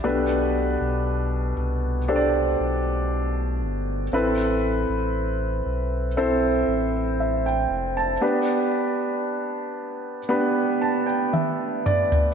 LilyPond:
<<
  \new Staff \with { instrumentName = "Upright piano" } { \time 4/4 \key g \mixolydian \tempo 4 = 59 << { b,4. r2 r8 | r2. e''16 g''8 a''16~ | a''16 r2 r16 a''16 g''16 e''8 d''8 | } \\ { <d' g' a' b'>2 <d' g' a' c'' d''>2 | <c' e' a' b'>2 <c' e' a' c''>2 | <b d' g' b'>2 <b d' g' b'>2 | } >> }
  \new Staff \with { instrumentName = "Sub bass" } { \clef bass \time 4/4 \key g \mixolydian b,,8. b,,8. c,4 b,,4 g,,8 | a,,8. a,,8. b,,4 a,,4 f,,8 | r1 | }
  \new DrumStaff \with { instrumentName = "Drums" } \drummode { \time 4/4 r4 r4 r4 r4 | r4 r4 r4 r4 | r4 r4 r4 tommh8 toml16 tomfh16 | }
>>